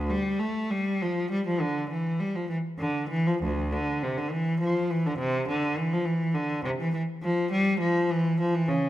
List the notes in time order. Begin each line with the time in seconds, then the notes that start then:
0.09 G3
0.39 A3
0.70 G3
1.02 F3
1.31 G3
1.47 F3
1.61 D3
1.89 E3
2.20 G3
2.35 F3
2.49 E3
2.79 D3
3.10 E3
3.27 F3
3.43 D2
3.72 D3
4.03 C3
4.17 D3
4.31 E3
4.60 F3
4.90 E3
5.06 D3
5.18 C3
5.48 D3
5.78 E3
5.93 F3
6.05 E3
6.34 D3
6.63 C3
6.80 E3
6.94 E3
7.23 F3
7.51 G3
7.79 F3
8.10 E3
8.40 F3
8.55 E3
8.68 C#3